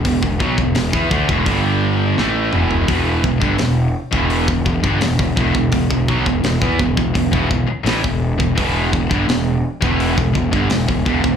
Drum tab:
HH |o---o---o-------|o---o---o---o---|o---o---o---o---|o---o---o---o---|
SD |----o-------o---|----o-------o---|----o-------o---|----o-------o---|
T2 |--------------o-|----------------|----------------|----------------|
FT |---------------o|----------------|----------------|----------------|
BD |oooo-oooo-------|o-oo---o-ooo-ooo|oooo-oooooo--o-o|o-oo---o-ooo-ooo|